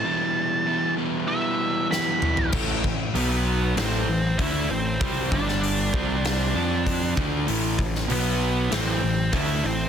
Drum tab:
CC |----------------|x---------------|----------------|----------------|
HH |----------------|----o---o---o---|o---o---o---o---|o---o---o---o---|
SD |------------o---|--------o-------|---o----o-------|---o----o-------|
T2 |--------------o-|----------------|----------------|----------------|
FT |---------------o|----------------|----------------|----------------|
BD |----------------|o-o---------o---|o-o---o-----o-o-|--o---------o---|